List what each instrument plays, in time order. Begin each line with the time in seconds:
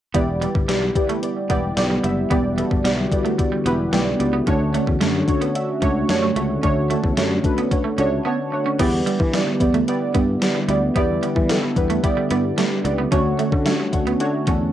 0.14 fretless electric bass E1, analog synth pad D3 G3 B3 E4, synth keys E3 B3 E4 G4 D5, clean electric guitar B3, kick, closed hi-hat
0.41 clean electric guitar G3, synth keys B3 E4 G4 D5, closed hi-hat
0.55 fretless electric bass G1, muted clean electric guitar stroke, kick
0.68 fretless electric bass B1, clean electric guitar G3, synth keys B3 E4 G4 D5, snare, closed hi-hat
0.82 muted clean electric guitar stroke
0.95 synth keys B3 E4 G4 D5, analog polysynth E4 G4 B4, kick, closed hi-hat
1.09 clean electric guitar A3, closed hi-hat
1.22 synth keys B3 E4 G4 D5, closed hi-hat
1.49 fretless electric bass E1, synth keys B3 E4 G4 D5, clean electric guitar B3, kick, closed hi-hat
1.76 fretless electric bass B1, synth keys B3 E4 G4 D5, muted clean electric guitar stroke, snare, closed hi-hat
1.90 clean electric guitar G3
2.03 fretless electric bass F#1, clean electric guitar G3, synth keys B3 E4 G4 E5, closed hi-hat
2.30 fretless electric bass E1, synth keys E3 B3 E4 G4 D5, clean electric guitar B3, analog synth pad F#4, kick, closed hi-hat
2.58 clean electric guitar G3, synth keys B3 E4 G4 A4, closed hi-hat
2.71 fretless electric bass G1, muted clean electric guitar stroke, kick
2.84 fretless electric bass B1, clean electric guitar G3, synth keys B3 E4 G4 D5, snare, closed hi-hat
2.98 muted clean electric guitar stroke
3.12 synth keys B3 E4 G4 D5, analog polysynth E4 G4 B4, kick, closed hi-hat
3.25 clean electric guitar A3, closed hi-hat
3.38 synth keys B3 E4 G4 D5, muted clean electric guitar stroke, kick, closed hi-hat
3.52 clean electric guitar G3
3.65 fretless electric bass E1, synth keys B3 E4 G4 B4, clean electric guitar B3, closed hi-hat
3.92 fretless electric bass B1, clean electric guitar A3, synth keys B3 E4 G4 D5, snare, closed hi-hat
4.20 fretless electric bass C#2, synth keys B3 E4 G4 D5, muted clean electric guitar stroke, closed hi-hat
4.33 clean electric guitar B3
4.47 fretless electric bass D2, synth keys D3 A3 D4 F#4 C#5, analog synth pad A3 C#4 F#4, clean electric guitar C#4, kick, closed hi-hat
4.74 clean electric guitar A3, synth keys A3 D4 F#4 C#5, closed hi-hat
4.87 fretless electric bass E2, muted clean electric guitar stroke, kick
5.01 fretless electric bass F#2, clean electric guitar A3, synth keys A3 D4 F#4 C#5, snare, closed hi-hat
5.15 muted clean electric guitar stroke
5.28 synth keys A3 D4 F#4 C#5, analog polysynth D4 F#4 A4, kick, closed hi-hat
5.41 clean electric guitar B3, closed hi-hat
5.55 synth keys A3 D4 F#4 E5, closed hi-hat
5.81 fretless electric bass C#2, synth keys A3 D4 F#4 C#5, clean electric guitar C#4, kick, closed hi-hat
6.09 fretless electric bass F#2, synth keys A3 D4 F#4 C#5, muted clean electric guitar stroke, snare, closed hi-hat
6.22 clean electric guitar A3
6.36 fretless electric bass C#2, synth keys A3 D4 F#4 C#5, clean electric guitar A3, closed hi-hat
6.63 fretless electric bass D2, synth keys D3 A3 D4 F#4 C#5, clean electric guitar C#4, kick, closed hi-hat
6.90 clean electric guitar A3, synth keys A3 D4 F#4 A4, closed hi-hat
7.04 fretless electric bass E2, muted clean electric guitar stroke, kick
7.17 fretless electric bass F#2, clean electric guitar A3, synth keys A3 D4 F#4 C#5, snare, closed hi-hat
7.31 muted clean electric guitar stroke
7.44 synth keys A3 D4 F#4 B4, analog polysynth D4 F#4 A4, kick, closed hi-hat
7.58 clean electric guitar B3, closed hi-hat
7.71 synth keys A3 D4 F#4 C#5, muted clean electric guitar stroke, kick, closed hi-hat
7.84 clean electric guitar A3
7.98 fretless electric bass C#2, synth keys A3 D4 F#4 C#5, clean electric guitar C#4, closed hi-hat
8.25 synth keys A3 D4 F#4 C#5 A5, clean electric guitar B3
8.52 synth keys A3 D4 F#4 C#5 F#5, muted clean electric guitar stroke
8.66 clean electric guitar C#4
8.79 fretless electric bass E2, analog synth pad D3 G3 B3 E4, synth keys E3 B3 E4 G4 D5, clean electric guitar B3, kick, closed hi-hat, crash
9.06 clean electric guitar G3, synth keys B3 E4 G4 D5, closed hi-hat
9.20 fretless electric bass E3, muted clean electric guitar stroke, kick
9.34 clean electric guitar G3, synth keys B3 E4 G4 D5, snare, closed hi-hat
9.47 muted clean electric guitar stroke
9.60 fretless electric bass E2, synth keys B3 E4 G4 D5, kick, closed hi-hat
9.74 clean electric guitar A3, closed hi-hat
9.88 synth keys B3 E4 G4 D5, closed hi-hat
10.14 fretless electric bass G2, clean electric guitar B3, synth keys B3 E4 G4 D5, kick, closed hi-hat
10.42 synth keys B3 E4 G4 D5, muted clean electric guitar stroke, snare, closed hi-hat
10.55 clean electric guitar G3
10.68 fretless electric bass D2, clean electric guitar G3, synth keys B3 E4 G4 D5, closed hi-hat
10.96 fretless electric bass E2, synth keys E3 B3 E4 G4 D5, clean electric guitar B3, kick, closed hi-hat
11.22 clean electric guitar G3, synth keys B3 E4 G4 D5, closed hi-hat
11.36 fretless electric bass E3, muted clean electric guitar stroke, kick
11.49 clean electric guitar G3, synth keys B3 E4 G4 A4, snare, closed hi-hat
11.63 muted clean electric guitar stroke
11.76 fretless electric bass E2, synth keys B3 E4 G4 B4, kick, closed hi-hat
11.90 clean electric guitar A3, closed hi-hat
12.03 synth keys B3 E4 G4 D5, muted clean electric guitar stroke, kick, closed hi-hat
12.17 clean electric guitar G3
12.31 fretless electric bass G2, synth keys B3 E4 G4 D5, clean electric guitar B3, closed hi-hat
12.57 clean electric guitar A3, synth keys B3 E4 G4 D5, snare, closed hi-hat
12.84 fretless electric bass C#2, synth keys B3 E4 G4 D5, muted clean electric guitar stroke, closed hi-hat
12.98 clean electric guitar B3
13.11 fretless electric bass D2, synth keys D3 A3 D4 F#4 C#5, analog synth pad A3 C#4 F#4, clean electric guitar C#4, kick, closed hi-hat
13.39 synth keys A3 D4 F#4 C#5, clean electric guitar A3, closed hi-hat
13.52 fretless electric bass D3, muted clean electric guitar stroke, kick
13.66 synth keys A3 D4 F#4 C#5, clean electric guitar A3, snare, closed hi-hat
13.80 muted clean electric guitar stroke
13.93 fretless electric bass D2, synth keys A3 D4 F#4 C#5, kick, closed hi-hat
14.07 clean electric guitar B3, closed hi-hat
14.20 synth keys A3 D4 F#4 C#5, closed hi-hat
14.47 fretless electric bass E2, synth keys A3 D4 F#4 A4, clean electric guitar C#4, kick, closed hi-hat